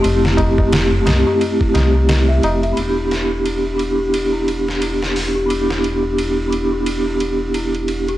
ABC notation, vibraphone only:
X:1
M:4/4
L:1/8
Q:"Swing 16ths" 1/4=88
K:Ephr
V:1 name="Vibraphone"
[A,CEG]3 [A,CEG]4- [A,CEG] | [B,DEG]3 [B,DEG]4- [B,DEG] | [B,DEG]3 [B,DEG]4- [B,DEG] |]